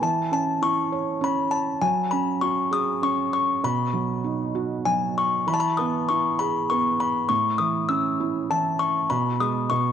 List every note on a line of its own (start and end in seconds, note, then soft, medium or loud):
0.02 1.78 E3 medium
0.02 0.16 A5 medium
0.31 1.20 C#4 soft
0.31 0.64 A5 medium
0.62 1.78 E4 soft
0.62 1.18 C#6 medium
0.92 1.79 C#5 soft
1.21 1.80 C#4 medium
1.21 1.51 B5 medium
1.51 1.79 A5 medium
1.81 3.59 F#3 medium
1.81 2.10 G#5 medium
2.11 3.01 C#4 soft
2.11 2.39 B5 medium
2.41 3.59 F#4 soft
2.41 2.73 C#6 medium
2.71 3.60 G#4 medium
2.71 3.04 D#6 medium
3.02 3.61 C#4 soft
3.02 3.32 C#6 medium
3.33 3.64 C#6 medium
3.64 5.44 B2 medium
3.64 4.90 B5 medium
3.93 4.85 F#3 soft
4.24 5.44 D#4 soft
4.55 5.45 F#4 soft
4.85 5.46 F#3 soft
4.85 5.14 G#5 medium
5.18 5.49 C#6 medium
5.47 7.26 E3 medium
5.47 5.54 B5 medium
5.54 5.61 A5 medium
5.60 5.76 B5 medium
5.77 6.70 B3 soft
5.77 6.10 D#6 medium
6.09 7.27 E4 soft
6.09 6.40 C#6 medium
6.39 7.28 G#4 soft
6.39 6.53 B5 medium
6.70 7.29 B3 soft
6.70 7.01 C#6 medium
7.00 7.31 B5 medium
7.29 9.06 A2 medium
7.29 7.61 C#6 loud
7.58 8.48 E3 soft
7.58 7.90 D#6 medium
7.89 9.06 C#4 soft
7.89 8.52 E6 medium
8.20 9.08 E4 medium
8.50 9.09 E3 soft
8.50 8.82 A5 medium
8.79 9.11 C#6 medium
9.10 9.69 B2 medium
9.10 9.41 B5 medium
9.40 9.70 G#3 soft
9.40 9.68 D#6 medium
9.70 9.92 B2 medium
9.70 9.92 C#6 medium